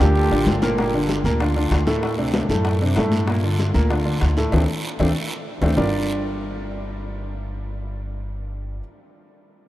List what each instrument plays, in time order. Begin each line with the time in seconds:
0.00 upright bass D2, grand piano D3 D4 F4, flugelhorn G4, high conga, short guiro
0.15 high conga, long guiro
0.30 upright bass A1, grand piano D3 D4 F4, high conga
0.46 upright bass G1, low bongo, high conga, short guiro
0.62 grand piano A#2 A#3 A#4, low bongo, high conga, short guiro
0.78 grand piano A#2 A#3 A#4, high bongo, high conga, long guiro
0.94 grand piano D3 D4 F4, high bongo, high conga
1.09 high bongo, high conga, short guiro
1.24 upright bass D2, grand piano A#2 A#3 A#4, high bongo, high conga, short guiro
1.40 grand piano D3 D4 F4, high bongo, high conga, long guiro
1.56 grand piano D3 D4 F4, high conga
1.71 upright bass D2, high bongo, low bongo, high conga, short guiro
1.87 grand piano A2 A3 A4, high bongo, high conga, short guiro
2.03 high bongo, high conga, long guiro
2.18 grand piano C3 C4 D4, high bongo, high conga
2.34 high bongo, high conga, short guiro
2.49 upright bass F#2, grand piano A2 A3 A4, high bongo, high conga, short guiro
2.65 high bongo, high conga, long guiro
2.81 grand piano C3 C4 D4, high conga
2.96 upright bass G2, grand piano A2 A3 A4, high bongo, low bongo, high conga, short guiro
3.12 high bongo, high conga, short guiro
3.27 grand piano A#2 A#3 A#4, high bongo, high conga, long guiro
3.44 grand piano D3 D4 F4, high bongo, high conga
3.59 high bongo, high conga, short guiro
3.74 upright bass D2, grand piano A#2 A#3 A#4, high bongo, short guiro
3.90 grand piano D3 D4 F4, high bongo, high conga, long guiro
4.05 grand piano D3 D4 F4, high conga
4.21 upright bass D2, high bongo, low bongo, high conga, short guiro
4.37 grand piano A2 A3 A4, high bongo, short guiro
4.52 upright bass D2, grand piano A3 C4 D4, low bongo, low conga, long guiro
4.99 upright bass D2, grand piano A3 C4 D4, low bongo, low conga, long guiro
5.61 upright bass D2, grand piano A3 C4 D4, low bongo, low conga, long guiro
5.77 upright bass G1, grand piano G3 D4 F4 G4 A#4 D5, low bongo, low conga, long guiro